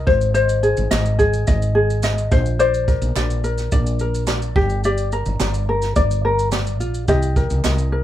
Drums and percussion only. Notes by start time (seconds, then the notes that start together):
0.07 kick
0.21 shaker
0.35 shaker
0.49 shaker
0.63 shaker
0.77 shaker
0.91 snare, clap, shaker
1.05 shaker
1.19 kick, shaker
1.33 shaker
1.47 kick, shaker
1.62 shaker
1.90 shaker
2.03 snare, clap, shaker
2.18 shaker
2.32 kick, shaker
2.46 shaker
2.60 shaker
2.74 shaker
2.88 kick, shaker
3.02 shaker
3.16 snare, clap, shaker
3.30 shaker
3.44 shaker
3.58 snare, shaker
3.72 kick, shaker
3.87 shaker
3.99 shaker
4.15 shaker
4.27 snare, clap, shaker
4.42 shaker
4.56 kick
4.70 shaker
4.84 shaker
4.98 shaker
5.12 shaker
5.26 shaker
5.40 snare, clap, shaker
5.54 shaker
5.82 snare, shaker
5.96 kick, shaker
6.11 shaker
6.39 shaker
6.52 snare, clap, shaker
6.67 shaker
6.81 shaker
6.94 shaker
7.08 kick, shaker
7.22 shaker
7.36 kick, shaker
7.50 shaker
7.64 snare, clap, shaker
7.78 shaker